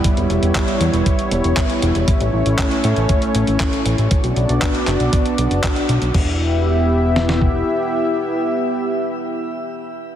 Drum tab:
CC |----------------|----------------|----------------|x---------------|
HH |xxxxxxxxxxxxxxxx|xx-xxxxxxxxxxxxx|xxxxxxxxxxxxxxxx|----------------|
CP |----x-------x---|----x-------x---|----x-x-----x---|----------------|
SD |----------------|----------------|----------------|--------oo------|
BD |o---o---o---o---|o---o---o---o---|o---o---o---o---|o---------o-----|

CC |----------------|
HH |----------------|
CP |----------------|
SD |----------------|
BD |----------------|